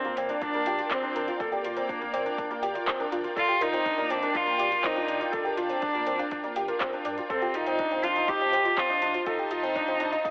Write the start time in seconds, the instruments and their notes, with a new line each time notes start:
Already playing: cello C4, ambient pad F4 A#4 D5 G5
0.05 sub bass D2, felt piano A#3, synth arpeggio sound F4, closed hi-hat
0.17 sub bass G1, cello A#3, felt piano C4, closed hi-hat
0.29 felt piano D4, synth arpeggio sound D5, closed hi-hat
0.42 cello D4, felt piano D4, kick, closed hi-hat
0.54 felt piano A#3, synth arpeggio sound A#4, closed hi-hat
0.66 sub bass G1, synth arpeggio sound F4, felt piano G4, closed hi-hat
0.79 felt piano F4, closed hi-hat
0.91 felt piano C4, cello C4, synth arpeggio sound D5, kick, clap, closed hi-hat
1.03 felt piano D4, closed hi-hat
1.15 sub bass G1, felt piano D4, synth arpeggio sound A#4, closed hi-hat
1.28 synth arpeggio sound F4, felt piano F4, closed hi-hat
1.40 cello A#3, felt piano A4, kick, closed hi-hat
1.52 felt piano G4, synth arpeggio sound D5, closed hi-hat
1.64 sub bass G1, felt piano F4, closed hi-hat
1.77 felt piano C4, synth arpeggio sound A#4, closed hi-hat
1.89 felt piano D4, synth arpeggio sound F4, kick, closed hi-hat
2.01 sub bass D2, felt piano A#3, closed hi-hat
2.13 sub bass G1, felt piano C4, synth arpeggio sound D5, closed hi-hat
2.26 felt piano D4, closed hi-hat
2.38 felt piano D4, synth arpeggio sound A#4, kick, closed hi-hat
2.50 felt piano A#3, synth arpeggio sound F4, closed hi-hat
2.62 sub bass G1, felt piano G4, closed hi-hat
2.75 felt piano F4, synth arpeggio sound D5, closed hi-hat
2.87 felt piano C4, kick, clap, closed hi-hat
2.99 felt piano D4, synth arpeggio sound A#4, closed hi-hat
3.12 sub bass G1, felt piano D4, synth arpeggio sound F4, closed hi-hat
3.24 felt piano F4, closed hi-hat
3.36 cello F4, felt piano A4, synth arpeggio sound D5, kick, closed hi-hat
3.49 felt piano G4, closed hi-hat
3.61 sub bass G1, cello D#4, felt piano F4, synth arpeggio sound A#4, closed hi-hat
3.73 felt piano C4, synth arpeggio sound F4, closed hi-hat
3.86 felt piano D4, kick, closed hi-hat
3.98 sub bass D2, felt piano A#3, synth arpeggio sound D5, closed hi-hat
4.10 sub bass G1, felt piano C4, cello D4, closed hi-hat
4.22 felt piano D4, synth arpeggio sound A#4, closed hi-hat
4.34 felt piano D4, synth arpeggio sound F4, cello F4, kick, closed hi-hat
4.46 felt piano A#3, closed hi-hat
4.58 sub bass G1, felt piano G4, synth arpeggio sound D5, closed hi-hat
4.71 felt piano F4, closed hi-hat
4.83 felt piano C4, cello D#4, synth arpeggio sound A#4, kick, clap, closed hi-hat
4.96 felt piano D4, synth arpeggio sound F4, closed hi-hat
5.08 sub bass G1, felt piano D4, closed hi-hat
5.20 felt piano F4, synth arpeggio sound D5, closed hi-hat
5.32 cello D4, felt piano A4, kick, closed hi-hat
5.45 felt piano G4, synth arpeggio sound A#4, closed hi-hat
5.57 sub bass G1, felt piano F4, synth arpeggio sound F4, closed hi-hat
5.70 felt piano C4, closed hi-hat
5.82 felt piano D4, synth arpeggio sound D5, kick, closed hi-hat
5.94 sub bass D2, felt piano A#3, closed hi-hat
6.07 sub bass G1, felt piano C4, synth arpeggio sound A#4, closed hi-hat
6.19 felt piano D4, synth arpeggio sound F4, closed hi-hat
6.31 felt piano D4, kick, closed hi-hat
6.44 felt piano A#3, synth arpeggio sound D5, closed hi-hat
6.56 sub bass G1, felt piano G4, closed hi-hat
6.68 felt piano F4, synth arpeggio sound A#4, closed hi-hat
6.80 felt piano C4, synth arpeggio sound F4, kick, clap, closed hi-hat
6.93 felt piano D4, closed hi-hat
7.05 sub bass G2, felt piano D4, synth arpeggio sound D5, closed hi-hat
7.18 felt piano F4, closed hi-hat
7.29 cello C4, felt piano A4, synth arpeggio sound C5, ambient pad C5 D#5 A5, kick, closed hi-hat
7.42 synth arpeggio sound F4, felt piano G4, closed hi-hat
7.54 sub bass F1, cello D#4, felt piano F4, closed hi-hat
7.66 felt piano C4, synth arpeggio sound D#5, closed hi-hat
7.79 felt piano D4, kick, closed hi-hat
7.91 sub bass C2, felt piano C4, synth arpeggio sound C5, closed hi-hat
8.03 sub bass F1, felt piano D4, synth arpeggio sound F4, cello F4, closed hi-hat
8.16 felt piano D#4, closed hi-hat
8.28 felt piano D#4, cello G4, synth arpeggio sound D#5, kick, closed hi-hat
8.41 felt piano C4, closed hi-hat
8.52 sub bass F1, felt piano G4, synth arpeggio sound C5, closed hi-hat
8.64 synth arpeggio sound F4, felt piano F4, closed hi-hat
8.77 felt piano C4, cello F4, kick, clap, closed hi-hat
8.89 felt piano D4, synth arpeggio sound D#5, closed hi-hat
9.02 sub bass F1, felt piano D4, closed hi-hat
9.14 felt piano F4, synth arpeggio sound C5, closed hi-hat
9.26 cello D#4, synth arpeggio sound F4, felt piano A4, kick, closed hi-hat
9.39 felt piano G4, closed hi-hat
9.51 sub bass F1, felt piano F4, synth arpeggio sound D#5, closed hi-hat
9.63 felt piano C4, closed hi-hat
9.76 felt piano D4, synth arpeggio sound C5, kick, closed hi-hat
9.88 sub bass C2, felt piano C4, synth arpeggio sound F4, closed hi-hat
10.00 sub bass F1, felt piano D4, closed hi-hat
10.12 felt piano D#4, synth arpeggio sound D#5, closed hi-hat
10.24 felt piano D#4, kick, closed hi-hat